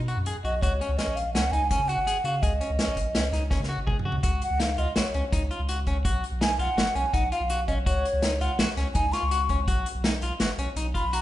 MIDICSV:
0, 0, Header, 1, 5, 480
1, 0, Start_track
1, 0, Tempo, 362319
1, 821, Time_signature, 5, 2, 24, 8
1, 14860, End_track
2, 0, Start_track
2, 0, Title_t, "Flute"
2, 0, Program_c, 0, 73
2, 586, Note_on_c, 0, 75, 86
2, 817, Note_on_c, 0, 73, 78
2, 837, Note_off_c, 0, 75, 0
2, 1290, Note_on_c, 0, 75, 83
2, 1310, Note_off_c, 0, 73, 0
2, 1533, Note_on_c, 0, 77, 81
2, 1553, Note_off_c, 0, 75, 0
2, 1767, Note_off_c, 0, 77, 0
2, 1775, Note_on_c, 0, 78, 84
2, 2007, Note_on_c, 0, 80, 95
2, 2027, Note_off_c, 0, 78, 0
2, 2248, Note_off_c, 0, 80, 0
2, 2255, Note_on_c, 0, 80, 93
2, 2493, Note_on_c, 0, 78, 88
2, 2513, Note_off_c, 0, 80, 0
2, 2974, Note_on_c, 0, 77, 89
2, 2994, Note_off_c, 0, 78, 0
2, 3209, Note_on_c, 0, 75, 82
2, 3228, Note_off_c, 0, 77, 0
2, 5133, Note_off_c, 0, 75, 0
2, 5861, Note_on_c, 0, 78, 94
2, 6096, Note_on_c, 0, 77, 86
2, 6116, Note_off_c, 0, 78, 0
2, 6345, Note_on_c, 0, 75, 78
2, 6365, Note_off_c, 0, 77, 0
2, 6571, Note_off_c, 0, 75, 0
2, 6579, Note_on_c, 0, 73, 70
2, 7249, Note_off_c, 0, 73, 0
2, 8503, Note_on_c, 0, 80, 97
2, 8726, Note_off_c, 0, 80, 0
2, 8744, Note_on_c, 0, 78, 90
2, 9213, Note_on_c, 0, 80, 88
2, 9233, Note_off_c, 0, 78, 0
2, 9453, Note_on_c, 0, 78, 93
2, 9473, Note_off_c, 0, 80, 0
2, 9690, Note_off_c, 0, 78, 0
2, 9698, Note_on_c, 0, 77, 87
2, 10147, Note_off_c, 0, 77, 0
2, 10171, Note_on_c, 0, 75, 84
2, 10251, Note_off_c, 0, 75, 0
2, 10419, Note_on_c, 0, 73, 82
2, 11140, Note_on_c, 0, 78, 72
2, 11159, Note_off_c, 0, 73, 0
2, 11382, Note_off_c, 0, 78, 0
2, 11845, Note_on_c, 0, 80, 84
2, 12091, Note_on_c, 0, 85, 95
2, 12111, Note_off_c, 0, 80, 0
2, 12819, Note_off_c, 0, 85, 0
2, 14516, Note_on_c, 0, 83, 90
2, 14765, Note_on_c, 0, 82, 83
2, 14784, Note_off_c, 0, 83, 0
2, 14860, Note_off_c, 0, 82, 0
2, 14860, End_track
3, 0, Start_track
3, 0, Title_t, "Clean electric guitar"
3, 0, Program_c, 1, 27
3, 109, Note_on_c, 1, 66, 63
3, 231, Note_off_c, 1, 66, 0
3, 353, Note_on_c, 1, 68, 73
3, 474, Note_off_c, 1, 68, 0
3, 592, Note_on_c, 1, 66, 69
3, 713, Note_off_c, 1, 66, 0
3, 838, Note_on_c, 1, 66, 78
3, 957, Note_off_c, 1, 66, 0
3, 1075, Note_on_c, 1, 61, 69
3, 1195, Note_off_c, 1, 61, 0
3, 1310, Note_on_c, 1, 61, 69
3, 1555, Note_off_c, 1, 61, 0
3, 1787, Note_on_c, 1, 61, 68
3, 1909, Note_off_c, 1, 61, 0
3, 2025, Note_on_c, 1, 63, 64
3, 2147, Note_off_c, 1, 63, 0
3, 2271, Note_on_c, 1, 61, 75
3, 2392, Note_off_c, 1, 61, 0
3, 2508, Note_on_c, 1, 66, 68
3, 2630, Note_off_c, 1, 66, 0
3, 2744, Note_on_c, 1, 68, 73
3, 2866, Note_off_c, 1, 68, 0
3, 2983, Note_on_c, 1, 66, 73
3, 3106, Note_off_c, 1, 66, 0
3, 3214, Note_on_c, 1, 68, 76
3, 3339, Note_off_c, 1, 68, 0
3, 3454, Note_on_c, 1, 61, 69
3, 3579, Note_off_c, 1, 61, 0
3, 3698, Note_on_c, 1, 61, 67
3, 3946, Note_off_c, 1, 61, 0
3, 4170, Note_on_c, 1, 61, 70
3, 4296, Note_off_c, 1, 61, 0
3, 4413, Note_on_c, 1, 63, 66
3, 4538, Note_off_c, 1, 63, 0
3, 4644, Note_on_c, 1, 61, 67
3, 4772, Note_off_c, 1, 61, 0
3, 4886, Note_on_c, 1, 66, 65
3, 5013, Note_off_c, 1, 66, 0
3, 5124, Note_on_c, 1, 68, 69
3, 5251, Note_off_c, 1, 68, 0
3, 5369, Note_on_c, 1, 66, 68
3, 5495, Note_off_c, 1, 66, 0
3, 5605, Note_on_c, 1, 66, 72
3, 5856, Note_off_c, 1, 66, 0
3, 6087, Note_on_c, 1, 63, 69
3, 6214, Note_off_c, 1, 63, 0
3, 6335, Note_on_c, 1, 65, 67
3, 6460, Note_off_c, 1, 65, 0
3, 6575, Note_on_c, 1, 66, 69
3, 6700, Note_off_c, 1, 66, 0
3, 6817, Note_on_c, 1, 61, 68
3, 6941, Note_off_c, 1, 61, 0
3, 7053, Note_on_c, 1, 63, 73
3, 7179, Note_off_c, 1, 63, 0
3, 7297, Note_on_c, 1, 65, 62
3, 7422, Note_off_c, 1, 65, 0
3, 7537, Note_on_c, 1, 66, 71
3, 7662, Note_off_c, 1, 66, 0
3, 7780, Note_on_c, 1, 61, 74
3, 7904, Note_off_c, 1, 61, 0
3, 8013, Note_on_c, 1, 66, 76
3, 8263, Note_off_c, 1, 66, 0
3, 8493, Note_on_c, 1, 63, 71
3, 8619, Note_off_c, 1, 63, 0
3, 8735, Note_on_c, 1, 65, 67
3, 8861, Note_off_c, 1, 65, 0
3, 8975, Note_on_c, 1, 66, 69
3, 9101, Note_off_c, 1, 66, 0
3, 9212, Note_on_c, 1, 61, 70
3, 9339, Note_off_c, 1, 61, 0
3, 9451, Note_on_c, 1, 63, 73
3, 9578, Note_off_c, 1, 63, 0
3, 9698, Note_on_c, 1, 65, 69
3, 9823, Note_off_c, 1, 65, 0
3, 9936, Note_on_c, 1, 66, 75
3, 10062, Note_off_c, 1, 66, 0
3, 10176, Note_on_c, 1, 61, 77
3, 10302, Note_off_c, 1, 61, 0
3, 10418, Note_on_c, 1, 66, 76
3, 10667, Note_off_c, 1, 66, 0
3, 10910, Note_on_c, 1, 63, 74
3, 11032, Note_off_c, 1, 63, 0
3, 11145, Note_on_c, 1, 65, 69
3, 11269, Note_off_c, 1, 65, 0
3, 11388, Note_on_c, 1, 66, 77
3, 11511, Note_off_c, 1, 66, 0
3, 11622, Note_on_c, 1, 61, 70
3, 11747, Note_off_c, 1, 61, 0
3, 11864, Note_on_c, 1, 63, 75
3, 11988, Note_off_c, 1, 63, 0
3, 12103, Note_on_c, 1, 65, 71
3, 12228, Note_off_c, 1, 65, 0
3, 12339, Note_on_c, 1, 66, 72
3, 12465, Note_off_c, 1, 66, 0
3, 12584, Note_on_c, 1, 61, 70
3, 12709, Note_off_c, 1, 61, 0
3, 12820, Note_on_c, 1, 66, 78
3, 13069, Note_off_c, 1, 66, 0
3, 13300, Note_on_c, 1, 63, 70
3, 13426, Note_off_c, 1, 63, 0
3, 13550, Note_on_c, 1, 65, 67
3, 13673, Note_off_c, 1, 65, 0
3, 13782, Note_on_c, 1, 66, 68
3, 13907, Note_off_c, 1, 66, 0
3, 14027, Note_on_c, 1, 61, 69
3, 14151, Note_off_c, 1, 61, 0
3, 14265, Note_on_c, 1, 63, 74
3, 14389, Note_off_c, 1, 63, 0
3, 14498, Note_on_c, 1, 65, 67
3, 14624, Note_off_c, 1, 65, 0
3, 14746, Note_on_c, 1, 66, 76
3, 14860, Note_off_c, 1, 66, 0
3, 14860, End_track
4, 0, Start_track
4, 0, Title_t, "Analog synth bass"
4, 0, Program_c, 2, 38
4, 0, Note_on_c, 2, 47, 82
4, 209, Note_off_c, 2, 47, 0
4, 223, Note_on_c, 2, 42, 78
4, 448, Note_off_c, 2, 42, 0
4, 583, Note_on_c, 2, 35, 85
4, 808, Note_off_c, 2, 35, 0
4, 829, Note_on_c, 2, 37, 100
4, 1051, Note_off_c, 2, 37, 0
4, 1176, Note_on_c, 2, 37, 83
4, 1291, Note_off_c, 2, 37, 0
4, 1422, Note_on_c, 2, 34, 91
4, 1767, Note_on_c, 2, 37, 101
4, 1787, Note_off_c, 2, 34, 0
4, 1999, Note_off_c, 2, 37, 0
4, 2010, Note_on_c, 2, 37, 86
4, 2354, Note_off_c, 2, 37, 0
4, 2375, Note_on_c, 2, 49, 80
4, 2603, Note_off_c, 2, 49, 0
4, 2616, Note_on_c, 2, 32, 81
4, 2844, Note_off_c, 2, 32, 0
4, 2970, Note_on_c, 2, 49, 85
4, 3200, Note_off_c, 2, 49, 0
4, 3218, Note_on_c, 2, 37, 105
4, 3444, Note_off_c, 2, 37, 0
4, 3579, Note_on_c, 2, 37, 81
4, 3692, Note_off_c, 2, 37, 0
4, 3811, Note_on_c, 2, 34, 91
4, 4170, Note_on_c, 2, 37, 94
4, 4190, Note_off_c, 2, 34, 0
4, 4395, Note_off_c, 2, 37, 0
4, 4403, Note_on_c, 2, 37, 85
4, 4749, Note_off_c, 2, 37, 0
4, 4767, Note_on_c, 2, 49, 79
4, 4999, Note_off_c, 2, 49, 0
4, 5004, Note_on_c, 2, 32, 76
4, 5237, Note_off_c, 2, 32, 0
4, 5363, Note_on_c, 2, 49, 85
4, 5597, Note_off_c, 2, 49, 0
4, 5612, Note_on_c, 2, 37, 97
4, 5841, Note_off_c, 2, 37, 0
4, 5967, Note_on_c, 2, 37, 83
4, 6312, Note_off_c, 2, 37, 0
4, 6337, Note_on_c, 2, 37, 91
4, 6451, Note_off_c, 2, 37, 0
4, 6579, Note_on_c, 2, 34, 87
4, 6692, Note_off_c, 2, 34, 0
4, 6815, Note_on_c, 2, 37, 89
4, 6930, Note_off_c, 2, 37, 0
4, 7054, Note_on_c, 2, 37, 94
4, 7283, Note_off_c, 2, 37, 0
4, 7410, Note_on_c, 2, 37, 81
4, 7754, Note_off_c, 2, 37, 0
4, 7774, Note_on_c, 2, 37, 91
4, 8004, Note_off_c, 2, 37, 0
4, 8013, Note_on_c, 2, 35, 103
4, 8243, Note_off_c, 2, 35, 0
4, 8369, Note_on_c, 2, 35, 79
4, 8714, Note_off_c, 2, 35, 0
4, 8728, Note_on_c, 2, 35, 94
4, 8848, Note_off_c, 2, 35, 0
4, 8964, Note_on_c, 2, 32, 89
4, 9085, Note_off_c, 2, 32, 0
4, 9211, Note_on_c, 2, 35, 94
4, 9329, Note_off_c, 2, 35, 0
4, 9452, Note_on_c, 2, 35, 92
4, 9683, Note_off_c, 2, 35, 0
4, 9809, Note_on_c, 2, 35, 83
4, 10155, Note_off_c, 2, 35, 0
4, 10178, Note_on_c, 2, 35, 97
4, 10407, Note_off_c, 2, 35, 0
4, 10417, Note_on_c, 2, 37, 100
4, 10646, Note_off_c, 2, 37, 0
4, 10774, Note_on_c, 2, 37, 81
4, 11118, Note_off_c, 2, 37, 0
4, 11136, Note_on_c, 2, 37, 96
4, 11253, Note_off_c, 2, 37, 0
4, 11377, Note_on_c, 2, 34, 89
4, 11494, Note_off_c, 2, 34, 0
4, 11618, Note_on_c, 2, 37, 96
4, 11735, Note_off_c, 2, 37, 0
4, 11856, Note_on_c, 2, 37, 96
4, 12087, Note_off_c, 2, 37, 0
4, 12225, Note_on_c, 2, 37, 80
4, 12565, Note_off_c, 2, 37, 0
4, 12581, Note_on_c, 2, 37, 96
4, 12809, Note_off_c, 2, 37, 0
4, 12817, Note_on_c, 2, 35, 104
4, 13047, Note_off_c, 2, 35, 0
4, 13182, Note_on_c, 2, 35, 78
4, 13523, Note_off_c, 2, 35, 0
4, 13546, Note_on_c, 2, 35, 94
4, 13659, Note_off_c, 2, 35, 0
4, 13782, Note_on_c, 2, 32, 91
4, 13897, Note_off_c, 2, 32, 0
4, 14018, Note_on_c, 2, 35, 95
4, 14135, Note_off_c, 2, 35, 0
4, 14255, Note_on_c, 2, 35, 90
4, 14486, Note_off_c, 2, 35, 0
4, 14619, Note_on_c, 2, 35, 84
4, 14860, Note_off_c, 2, 35, 0
4, 14860, End_track
5, 0, Start_track
5, 0, Title_t, "Drums"
5, 106, Note_on_c, 9, 42, 50
5, 238, Note_off_c, 9, 42, 0
5, 343, Note_on_c, 9, 42, 73
5, 476, Note_off_c, 9, 42, 0
5, 592, Note_on_c, 9, 42, 48
5, 725, Note_off_c, 9, 42, 0
5, 828, Note_on_c, 9, 36, 97
5, 832, Note_on_c, 9, 42, 73
5, 961, Note_off_c, 9, 36, 0
5, 964, Note_off_c, 9, 42, 0
5, 1075, Note_on_c, 9, 42, 55
5, 1207, Note_off_c, 9, 42, 0
5, 1306, Note_on_c, 9, 38, 94
5, 1306, Note_on_c, 9, 42, 65
5, 1438, Note_off_c, 9, 38, 0
5, 1438, Note_off_c, 9, 42, 0
5, 1546, Note_on_c, 9, 42, 60
5, 1679, Note_off_c, 9, 42, 0
5, 1789, Note_on_c, 9, 38, 94
5, 1789, Note_on_c, 9, 42, 71
5, 1921, Note_off_c, 9, 38, 0
5, 1921, Note_off_c, 9, 42, 0
5, 2027, Note_on_c, 9, 42, 52
5, 2160, Note_off_c, 9, 42, 0
5, 2261, Note_on_c, 9, 42, 78
5, 2262, Note_on_c, 9, 36, 96
5, 2393, Note_off_c, 9, 42, 0
5, 2395, Note_off_c, 9, 36, 0
5, 2502, Note_on_c, 9, 42, 55
5, 2635, Note_off_c, 9, 42, 0
5, 2745, Note_on_c, 9, 42, 75
5, 2878, Note_off_c, 9, 42, 0
5, 2975, Note_on_c, 9, 42, 53
5, 3108, Note_off_c, 9, 42, 0
5, 3217, Note_on_c, 9, 36, 101
5, 3218, Note_on_c, 9, 42, 71
5, 3349, Note_off_c, 9, 36, 0
5, 3350, Note_off_c, 9, 42, 0
5, 3457, Note_on_c, 9, 42, 60
5, 3590, Note_off_c, 9, 42, 0
5, 3693, Note_on_c, 9, 38, 93
5, 3693, Note_on_c, 9, 42, 69
5, 3826, Note_off_c, 9, 38, 0
5, 3826, Note_off_c, 9, 42, 0
5, 3933, Note_on_c, 9, 36, 65
5, 3933, Note_on_c, 9, 42, 58
5, 4065, Note_off_c, 9, 36, 0
5, 4065, Note_off_c, 9, 42, 0
5, 4170, Note_on_c, 9, 38, 92
5, 4170, Note_on_c, 9, 42, 71
5, 4302, Note_off_c, 9, 38, 0
5, 4302, Note_off_c, 9, 42, 0
5, 4415, Note_on_c, 9, 38, 28
5, 4415, Note_on_c, 9, 42, 49
5, 4548, Note_off_c, 9, 38, 0
5, 4548, Note_off_c, 9, 42, 0
5, 4641, Note_on_c, 9, 38, 52
5, 4649, Note_on_c, 9, 36, 91
5, 4773, Note_off_c, 9, 38, 0
5, 4781, Note_off_c, 9, 36, 0
5, 4813, Note_on_c, 9, 38, 51
5, 4945, Note_off_c, 9, 38, 0
5, 5131, Note_on_c, 9, 47, 64
5, 5132, Note_on_c, 9, 36, 94
5, 5264, Note_off_c, 9, 47, 0
5, 5265, Note_off_c, 9, 36, 0
5, 5291, Note_on_c, 9, 45, 80
5, 5423, Note_off_c, 9, 45, 0
5, 5460, Note_on_c, 9, 43, 73
5, 5592, Note_off_c, 9, 43, 0
5, 5607, Note_on_c, 9, 42, 78
5, 5613, Note_on_c, 9, 36, 94
5, 5740, Note_off_c, 9, 42, 0
5, 5745, Note_off_c, 9, 36, 0
5, 5850, Note_on_c, 9, 42, 61
5, 5982, Note_off_c, 9, 42, 0
5, 6091, Note_on_c, 9, 38, 96
5, 6091, Note_on_c, 9, 42, 76
5, 6223, Note_off_c, 9, 38, 0
5, 6223, Note_off_c, 9, 42, 0
5, 6332, Note_on_c, 9, 42, 57
5, 6465, Note_off_c, 9, 42, 0
5, 6567, Note_on_c, 9, 38, 103
5, 6567, Note_on_c, 9, 42, 78
5, 6700, Note_off_c, 9, 38, 0
5, 6700, Note_off_c, 9, 42, 0
5, 6811, Note_on_c, 9, 42, 52
5, 6943, Note_off_c, 9, 42, 0
5, 7056, Note_on_c, 9, 36, 96
5, 7056, Note_on_c, 9, 38, 30
5, 7056, Note_on_c, 9, 42, 74
5, 7188, Note_off_c, 9, 36, 0
5, 7188, Note_off_c, 9, 38, 0
5, 7188, Note_off_c, 9, 42, 0
5, 7296, Note_on_c, 9, 42, 52
5, 7429, Note_off_c, 9, 42, 0
5, 7531, Note_on_c, 9, 42, 75
5, 7664, Note_off_c, 9, 42, 0
5, 7770, Note_on_c, 9, 42, 51
5, 7774, Note_on_c, 9, 36, 67
5, 7903, Note_off_c, 9, 42, 0
5, 7907, Note_off_c, 9, 36, 0
5, 8013, Note_on_c, 9, 42, 73
5, 8015, Note_on_c, 9, 36, 96
5, 8145, Note_off_c, 9, 42, 0
5, 8147, Note_off_c, 9, 36, 0
5, 8263, Note_on_c, 9, 42, 58
5, 8395, Note_off_c, 9, 42, 0
5, 8496, Note_on_c, 9, 38, 90
5, 8496, Note_on_c, 9, 42, 66
5, 8629, Note_off_c, 9, 38, 0
5, 8629, Note_off_c, 9, 42, 0
5, 8735, Note_on_c, 9, 42, 55
5, 8868, Note_off_c, 9, 42, 0
5, 8981, Note_on_c, 9, 38, 103
5, 8981, Note_on_c, 9, 42, 72
5, 9114, Note_off_c, 9, 38, 0
5, 9114, Note_off_c, 9, 42, 0
5, 9217, Note_on_c, 9, 42, 51
5, 9349, Note_off_c, 9, 42, 0
5, 9454, Note_on_c, 9, 36, 100
5, 9455, Note_on_c, 9, 42, 77
5, 9587, Note_off_c, 9, 36, 0
5, 9587, Note_off_c, 9, 42, 0
5, 9696, Note_on_c, 9, 42, 55
5, 9828, Note_off_c, 9, 42, 0
5, 9931, Note_on_c, 9, 42, 79
5, 10063, Note_off_c, 9, 42, 0
5, 10176, Note_on_c, 9, 36, 70
5, 10176, Note_on_c, 9, 42, 57
5, 10308, Note_off_c, 9, 36, 0
5, 10308, Note_off_c, 9, 42, 0
5, 10418, Note_on_c, 9, 36, 105
5, 10421, Note_on_c, 9, 42, 79
5, 10550, Note_off_c, 9, 36, 0
5, 10553, Note_off_c, 9, 42, 0
5, 10668, Note_on_c, 9, 42, 64
5, 10801, Note_off_c, 9, 42, 0
5, 10895, Note_on_c, 9, 38, 96
5, 10895, Note_on_c, 9, 42, 73
5, 11028, Note_off_c, 9, 38, 0
5, 11028, Note_off_c, 9, 42, 0
5, 11142, Note_on_c, 9, 42, 57
5, 11275, Note_off_c, 9, 42, 0
5, 11377, Note_on_c, 9, 38, 99
5, 11377, Note_on_c, 9, 42, 75
5, 11509, Note_off_c, 9, 38, 0
5, 11509, Note_off_c, 9, 42, 0
5, 11620, Note_on_c, 9, 38, 29
5, 11620, Note_on_c, 9, 42, 52
5, 11753, Note_off_c, 9, 38, 0
5, 11753, Note_off_c, 9, 42, 0
5, 11854, Note_on_c, 9, 42, 76
5, 11858, Note_on_c, 9, 36, 97
5, 11986, Note_off_c, 9, 42, 0
5, 11990, Note_off_c, 9, 36, 0
5, 12096, Note_on_c, 9, 38, 30
5, 12096, Note_on_c, 9, 42, 51
5, 12229, Note_off_c, 9, 38, 0
5, 12229, Note_off_c, 9, 42, 0
5, 12336, Note_on_c, 9, 42, 77
5, 12469, Note_off_c, 9, 42, 0
5, 12573, Note_on_c, 9, 42, 50
5, 12578, Note_on_c, 9, 36, 69
5, 12705, Note_off_c, 9, 42, 0
5, 12711, Note_off_c, 9, 36, 0
5, 12819, Note_on_c, 9, 42, 73
5, 12820, Note_on_c, 9, 36, 95
5, 12952, Note_off_c, 9, 42, 0
5, 12953, Note_off_c, 9, 36, 0
5, 13062, Note_on_c, 9, 42, 58
5, 13194, Note_off_c, 9, 42, 0
5, 13302, Note_on_c, 9, 38, 96
5, 13302, Note_on_c, 9, 42, 75
5, 13434, Note_off_c, 9, 38, 0
5, 13434, Note_off_c, 9, 42, 0
5, 13539, Note_on_c, 9, 42, 60
5, 13671, Note_off_c, 9, 42, 0
5, 13775, Note_on_c, 9, 38, 94
5, 13775, Note_on_c, 9, 42, 76
5, 13908, Note_off_c, 9, 38, 0
5, 13908, Note_off_c, 9, 42, 0
5, 14021, Note_on_c, 9, 42, 56
5, 14154, Note_off_c, 9, 42, 0
5, 14260, Note_on_c, 9, 42, 84
5, 14392, Note_off_c, 9, 42, 0
5, 14503, Note_on_c, 9, 36, 69
5, 14504, Note_on_c, 9, 42, 57
5, 14635, Note_off_c, 9, 36, 0
5, 14636, Note_off_c, 9, 42, 0
5, 14746, Note_on_c, 9, 42, 82
5, 14860, Note_off_c, 9, 42, 0
5, 14860, End_track
0, 0, End_of_file